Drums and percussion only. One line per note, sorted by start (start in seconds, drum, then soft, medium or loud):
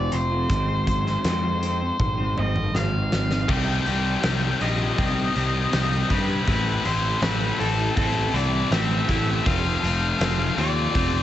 0.12 closed hi-hat medium
0.50 kick loud
0.50 closed hi-hat medium
0.87 kick medium
0.87 closed hi-hat medium
1.07 snare soft
1.25 snare loud
1.25 closed hi-hat medium
1.63 closed hi-hat medium
2.00 kick medium
2.00 high tom soft
2.38 mid tom medium
2.56 mid tom medium
2.75 snare medium
3.12 snare medium
3.31 snare medium
3.49 kick loud
3.49 crash medium
3.86 open hi-hat soft
4.23 snare loud
4.23 open hi-hat medium
4.61 open hi-hat soft
4.98 kick loud
4.98 open hi-hat medium
5.36 open hi-hat soft
5.73 snare medium
5.73 open hi-hat medium
6.10 kick medium
6.10 open hi-hat medium
6.47 kick loud
6.47 open hi-hat medium
6.85 open hi-hat medium
7.22 snare loud
7.22 open hi-hat medium
7.60 open hi-hat medium
7.97 kick loud
7.97 open hi-hat medium
8.35 open hi-hat soft
8.72 snare loud
8.72 open hi-hat medium
9.09 kick medium
9.09 open hi-hat medium
9.46 kick loud
9.46 open hi-hat medium
9.84 open hi-hat soft
10.21 snare loud
10.21 open hi-hat medium
10.58 open hi-hat soft
10.95 kick medium
10.95 open hi-hat medium